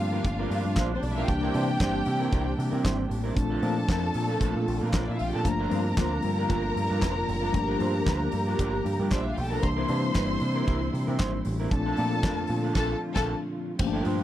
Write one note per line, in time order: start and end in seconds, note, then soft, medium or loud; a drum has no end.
0.00 0.19 G2 medium
0.00 9.60 A#2 medium
0.00 1.25 D3 medium
0.00 1.29 F3 medium
0.00 1.25 G3 medium
0.00 1.29 A3 medium
0.00 1.27 A#3 medium
0.00 0.23 C4 medium
0.00 1.28 D4 medium
0.00 3.33 D4 medium
0.00 0.85 F4 medium
0.00 0.85 F5 loud
0.12 0.24 D4 soft
0.12 0.25 F4 medium
0.12 0.25 A#4 medium
0.25 0.45 G1 medium
0.25 muted clean electric guitar stroke soft
0.25 kick loud
0.25 closed hi-hat medium
0.39 0.49 D4 medium
0.39 0.50 F4 medium
0.39 0.50 A#4 medium
0.50 0.62 G2 medium
0.50 0.66 D4 medium
0.50 0.65 F4 medium
0.50 0.64 A#4 medium
0.50 open hi-hat medium
0.65 0.74 G2 medium
0.65 muted clean electric guitar stroke soft
0.76 0.97 A#1 medium
0.76 0.96 D4 medium
0.76 0.92 F4 medium
0.76 0.91 C5 medium
0.76 kick loud
0.76 snare loud
0.76 clap medium
0.76 closed hi-hat medium
0.92 1.03 C4 medium
0.92 1.03 C5 medium
0.92 muted clean electric guitar stroke soft
1.02 1.23 B1 loud
1.02 1.11 D4 medium
1.02 1.10 D5 medium
1.02 muted clean electric guitar stroke soft
1.02 open hi-hat medium
1.11 1.19 E4 medium
1.11 1.20 E5 medium
1.17 1.28 D4 soft
1.17 1.27 F4 medium
1.17 1.29 F4 medium
1.17 1.29 A#4 medium
1.17 1.28 F5 medium
1.27 1.49 C2 medium
1.27 3.35 C3 medium
1.27 1.47 E3 medium
1.27 1.48 G3 medium
1.27 3.35 G3 medium
1.27 1.48 A#3 medium
1.27 1.48 D4 medium
1.27 3.06 G4 medium
1.27 3.06 G5 loud
1.27 muted clean electric guitar stroke soft
1.27 kick loud
1.27 closed hi-hat medium
1.43 1.53 C4 medium
1.43 1.54 E4 medium
1.43 1.56 A#4 medium
1.54 1.75 C3 loud
1.54 2.32 E3 medium
1.54 2.32 G3 medium
1.54 2.32 A#3 medium
1.54 1.70 C4 medium
1.54 2.32 D4 medium
1.54 1.69 E4 medium
1.54 1.69 C5 medium
1.54 open hi-hat medium
1.69 muted clean electric guitar stroke soft
1.80 2.01 G1 loud
1.80 2.00 C4 medium
1.80 1.95 E4 medium
1.80 1.94 C5 medium
1.80 kick loud
1.80 snare loud
1.80 clap medium
1.80 closed hi-hat medium
1.95 muted clean electric guitar stroke soft
2.05 2.27 C3 loud
2.05 muted clean electric guitar stroke soft
2.05 open hi-hat medium
2.20 2.30 C4 medium
2.20 2.31 E4 medium
2.20 2.32 A#4 medium
2.31 2.53 C2 loud
2.31 2.51 C4 medium
2.31 2.46 E4 medium
2.31 2.45 A#4 medium
2.31 kick loud
2.31 closed hi-hat medium
2.46 muted clean electric guitar stroke soft
2.57 2.70 C3 medium
2.57 muted clean electric guitar stroke soft
2.57 open hi-hat medium
2.71 2.82 C3 loud
2.71 2.81 C4 soft
2.71 2.82 E4 soft
2.71 2.84 A#4 medium
2.82 3.05 G#1 medium
2.82 3.03 C4 medium
2.82 2.97 E4 medium
2.82 2.97 C5 medium
2.82 kick loud
2.82 snare loud
2.82 clap medium
2.82 closed hi-hat medium
2.98 muted clean electric guitar stroke soft
3.09 3.31 A1 medium
3.09 muted clean electric guitar stroke soft
3.09 open hi-hat medium
3.24 3.35 C4 medium
3.24 3.36 E4 medium
3.24 3.36 A#4 medium
3.35 3.57 A#1 loud
3.35 9.59 D3 medium
3.35 3.56 F3 medium
3.35 3.56 A3 medium
3.35 5.43 A3 medium
3.35 3.56 C4 medium
3.35 3.57 D4 medium
3.35 7.50 F4 medium
3.35 4.78 A4 medium
3.35 4.77 A5 medium
3.35 muted clean electric guitar stroke soft
3.35 kick loud
3.35 closed hi-hat medium
3.50 3.61 A#3 medium
3.50 3.62 D4 medium
3.50 3.64 A4 medium
3.62 3.83 A#2 loud
3.62 4.40 F3 medium
3.62 4.40 A3 medium
3.62 3.79 A#3 medium
3.62 4.41 C4 medium
3.62 3.77 D4 medium
3.62 4.41 D4 loud
3.62 3.76 A#4 medium
3.62 open hi-hat medium
3.76 muted clean electric guitar stroke medium
3.88 4.09 F2 medium
3.88 4.08 A#3 medium
3.88 4.02 D4 medium
3.88 4.02 A#4 medium
3.88 kick loud
3.88 snare loud
3.88 clap medium
3.88 closed hi-hat medium
4.02 muted clean electric guitar stroke soft
4.13 4.36 A#2 medium
4.13 muted clean electric guitar stroke soft
4.13 open hi-hat medium
4.28 4.38 A#3 soft
4.28 4.39 D4 medium
4.28 4.41 A4 medium
4.39 4.52 A#1 medium
4.39 4.60 A#3 medium
4.39 4.54 D4 medium
4.39 4.53 A4 medium
4.39 kick loud
4.39 closed hi-hat medium
4.55 4.65 A#2 loud
4.55 muted clean electric guitar stroke soft
4.65 4.79 A#1 medium
4.65 muted clean electric guitar stroke soft
4.65 open hi-hat medium
4.80 4.91 A#2 medium
4.80 4.91 A#3 soft
4.80 4.92 D4 soft
4.80 4.94 A4 medium
4.85 4.93 A#3 medium
4.85 4.93 A#4 medium
4.92 5.05 A#1 medium
4.92 5.12 A#3 medium
4.92 5.02 C4 medium
4.92 5.07 D4 medium
4.92 5.06 A#4 medium
4.92 5.02 C5 medium
4.92 kick loud
4.92 snare loud
4.92 clap loud
4.92 closed hi-hat medium
5.02 5.11 D4 medium
5.02 5.11 D5 medium
5.07 5.18 A#2 medium
5.07 muted clean electric guitar stroke medium
5.11 5.20 E4 medium
5.11 5.19 E5 medium
5.19 5.31 A#1 loud
5.19 5.27 F4 medium
5.19 5.28 F5 medium
5.19 muted clean electric guitar stroke soft
5.19 open hi-hat medium
5.29 5.37 G4 medium
5.29 5.46 A4 medium
5.29 5.37 G5 medium
5.34 5.44 A#2 medium
5.34 5.44 A#3 soft
5.34 5.43 D4 medium
5.38 5.46 A4 medium
5.38 5.46 A5 medium
5.44 5.66 G1 medium
5.44 5.65 F3 medium
5.44 11.68 G3 medium
5.44 5.65 A3 medium
5.44 5.65 A#3 medium
5.44 5.66 D4 medium
5.44 9.03 A#4 medium
5.44 9.03 A#5 medium
5.44 muted clean electric guitar stroke soft
5.44 kick loud
5.44 closed hi-hat medium
5.59 5.69 D4 medium
5.59 5.70 F4 medium
5.59 5.72 A#4 medium
5.70 5.92 G2 loud
5.70 6.48 F3 medium
5.70 6.48 G3 medium
5.70 6.49 A#3 medium
5.70 5.78 C4 medium
5.70 5.87 D4 medium
5.70 5.86 F4 medium
5.70 5.85 C5 medium
5.70 open hi-hat medium
5.77 6.52 D4 medium
5.85 muted clean electric guitar stroke soft
5.97 6.18 D2 loud
5.97 6.17 D4 medium
5.97 6.13 F4 medium
5.97 6.13 C5 medium
5.97 kick loud
5.97 snare loud
5.97 clap medium
5.97 closed hi-hat medium
6.13 muted clean electric guitar stroke soft
6.22 6.45 G2 medium
6.22 muted clean electric guitar stroke soft
6.22 open hi-hat medium
6.37 6.47 D4 medium
6.37 6.49 F4 medium
6.37 6.49 A#4 medium
6.49 6.70 G1 loud
6.49 6.69 D4 medium
6.49 6.63 F4 medium
6.49 6.62 A#4 medium
6.49 kick loud
6.49 closed hi-hat medium
6.63 muted clean electric guitar stroke soft
6.74 6.88 G2 medium
6.74 muted clean electric guitar stroke soft
6.74 open hi-hat medium
6.88 7.00 G2 medium
6.88 6.98 D4 medium
6.88 6.99 F4 medium
6.88 7.01 A#4 medium
7.00 7.23 F1 medium
7.00 7.22 D4 medium
7.00 7.16 F4 medium
7.00 7.15 C5 medium
7.00 kick loud
7.00 snare loud
7.00 clap medium
7.00 closed hi-hat medium
7.16 muted clean electric guitar stroke soft
7.26 7.49 F#1 medium
7.26 muted clean electric guitar stroke soft
7.26 open hi-hat medium
7.41 7.52 D4 soft
7.41 7.52 F4 medium
7.41 7.53 A#4 medium
7.52 7.75 G1 medium
7.52 7.73 F3 medium
7.52 7.73 A3 medium
7.52 7.74 A#3 medium
7.52 7.74 D4 medium
7.52 muted clean electric guitar stroke soft
7.52 kick loud
7.52 closed hi-hat medium
7.56 9.62 G4 medium
7.68 7.78 D4 medium
7.68 7.79 F4 medium
7.68 7.81 A#4 medium
7.78 8.01 G2 loud
7.78 8.57 F3 medium
7.78 8.57 G3 medium
7.78 8.58 A#3 medium
7.78 7.96 D4 medium
7.78 8.58 D4 medium
7.78 7.94 F4 medium
7.78 7.94 C5 medium
7.78 open hi-hat medium
7.94 muted clean electric guitar stroke soft
8.05 8.27 D2 medium
8.05 8.27 D4 medium
8.05 8.21 F4 medium
8.05 8.20 C5 medium
8.05 kick loud
8.05 snare loud
8.05 clap loud
8.05 closed hi-hat medium
8.20 muted clean electric guitar stroke soft
8.31 8.53 G2 medium
8.31 muted clean electric guitar stroke soft
8.31 open hi-hat medium
8.47 8.57 D4 medium
8.47 8.59 F4 medium
8.47 8.59 A#4 medium
8.59 8.80 G1 loud
8.59 8.78 D4 medium
8.59 8.74 F4 medium
8.59 8.73 A#4 medium
8.59 kick loud
8.59 closed hi-hat medium
8.74 muted clean electric guitar stroke soft
8.85 8.97 G2 medium
8.85 muted clean electric guitar stroke soft
8.85 open hi-hat medium
8.99 9.08 G2 medium
8.99 9.09 D4 soft
8.99 9.10 F4 soft
8.99 9.12 A#4 medium
9.10 9.32 A#1 medium
9.10 9.30 D4 medium
9.10 9.20 D4 medium
9.10 9.26 F4 medium
9.10 9.25 C5 medium
9.10 9.20 D5 medium
9.10 kick loud
9.10 snare loud
9.10 clap medium
9.10 closed hi-hat medium
9.20 9.28 E4 medium
9.20 9.29 E5 medium
9.26 muted clean electric guitar stroke soft
9.30 9.38 F4 medium
9.30 9.38 F5 medium
9.36 9.58 B1 loud
9.36 9.47 G5 medium
9.36 muted clean electric guitar stroke soft
9.36 open hi-hat medium
9.40 9.47 G4 medium
9.47 9.55 A4 medium
9.47 9.63 A#4 medium
9.47 9.55 A5 medium
9.52 9.62 D4 medium
9.52 9.62 F4 medium
9.52 9.63 A#4 medium
9.52 9.63 A#5 loud
9.61 9.84 C2 medium
9.61 13.76 A#2 medium
9.61 11.70 C3 medium
9.61 9.82 E3 medium
9.61 9.83 G3 medium
9.61 9.83 A#3 medium
9.61 9.83 D4 medium
9.61 11.70 E4 medium
9.61 11.43 C5 medium
9.61 11.42 C6 medium
9.61 muted clean electric guitar stroke soft
9.61 kick loud
9.61 closed hi-hat medium
9.77 9.86 C4 medium
9.77 9.87 E4 medium
9.77 9.89 A#4 medium
9.88 10.10 C3 loud
9.88 10.67 E3 medium
9.88 10.67 G3 medium
9.88 10.67 A#3 medium
9.88 10.04 C4 medium
9.88 10.67 D4 medium
9.88 10.03 E4 medium
9.88 10.02 C5 medium
9.88 open hi-hat medium
10.03 muted clean electric guitar stroke soft
10.13 10.36 G1 medium
10.13 10.35 C4 medium
10.13 10.29 E4 medium
10.13 10.28 C5 medium
10.13 kick loud
10.13 snare loud
10.13 clap medium
10.13 closed hi-hat medium
10.28 muted clean electric guitar stroke soft
10.40 10.62 C3 medium
10.40 muted clean electric guitar stroke soft
10.40 open hi-hat medium
10.55 10.65 C4 soft
10.55 10.66 E4 medium
10.55 10.66 A#4 medium
10.66 10.88 C2 loud
10.66 10.86 C4 medium
10.66 10.81 E4 medium
10.66 10.80 A#4 medium
10.66 kick loud
10.66 closed hi-hat medium
10.81 muted clean electric guitar stroke soft
10.92 11.05 C3 medium
10.92 muted clean electric guitar stroke soft
10.92 open hi-hat medium
11.07 11.17 C3 medium
11.07 11.17 C4 soft
11.07 11.17 E4 soft
11.07 11.19 A#4 medium
11.18 11.40 G#1 medium
11.18 11.38 C4 medium
11.18 11.33 E4 medium
11.18 11.33 C5 loud
11.18 kick loud
11.18 snare loud
11.18 clap loud
11.18 closed hi-hat medium
11.33 muted clean electric guitar stroke soft
11.45 11.66 A1 medium
11.45 muted clean electric guitar stroke soft
11.45 open hi-hat medium
11.60 11.70 C4 medium
11.60 11.71 E4 soft
11.60 11.71 A#4 medium
11.70 11.92 A#1 medium
11.70 13.78 D3 medium
11.70 11.91 F3 medium
11.70 11.92 A3 medium
11.70 13.78 A3 medium
11.70 11.92 C4 medium
11.70 11.92 D4 medium
11.70 13.77 F4 medium
11.70 12.73 A4 medium
11.70 12.73 A5 loud
11.70 muted clean electric guitar stroke soft
11.70 kick loud
11.70 closed hi-hat medium
11.86 11.96 A#3 medium
11.86 11.98 D4 medium
11.86 11.99 A4 medium
11.97 12.25 A#2 loud
11.97 12.76 F3 medium
11.97 12.76 A3 medium
11.97 12.13 A#3 medium
11.97 12.76 C4 medium
11.97 12.13 D4 medium
11.97 12.76 D4 medium
11.97 12.12 A#4 medium
11.97 open hi-hat medium
12.12 muted clean electric guitar stroke soft
12.23 12.44 F2 medium
12.23 12.43 A#3 medium
12.23 12.38 D4 medium
12.23 12.38 A#4 medium
12.23 kick loud
12.23 snare loud
12.23 clap loud
12.23 closed hi-hat medium
12.38 muted clean electric guitar stroke soft
12.47 12.70 A#2 loud
12.47 muted clean electric guitar stroke soft
12.47 open hi-hat medium
12.63 12.72 A#3 soft
12.63 12.74 D4 medium
12.63 12.75 A4 medium
12.73 12.94 A#1 loud
12.73 12.93 A#3 medium
12.73 12.94 D4 medium
12.73 12.93 A4 medium
12.73 12.94 A4 medium
12.73 12.94 A5 medium
12.73 kick loud
12.73 snare loud
12.73 crash medium
13.14 13.33 A#1 loud
13.14 13.34 A#3 loud
13.14 13.33 D4 medium
13.14 13.32 A4 medium
13.14 13.33 A4 medium
13.14 13.33 A5 medium
13.14 kick loud
13.14 snare loud
13.14 crash medium
13.79 14.00 G1 loud
13.79 14.23 A#2 medium
13.79 14.23 D3 medium
13.79 14.23 F3 medium
13.79 14.23 G3 medium
13.79 14.23 A3 medium
13.79 14.23 A#3 medium
13.79 13.87 C#4 medium
13.79 14.23 F4 medium
13.79 14.23 G4 medium
13.79 14.23 G5 medium
13.79 muted clean electric guitar stroke soft
13.79 kick loud
13.79 crash loud
13.87 14.23 D4 loud
13.93 14.03 D4 medium
13.93 14.04 F4 medium
13.93 14.06 A#4 medium
14.04 14.23 G2 loud
14.04 14.21 D4 medium
14.04 14.21 F4 medium
14.04 14.20 C5 medium
14.04 open hi-hat medium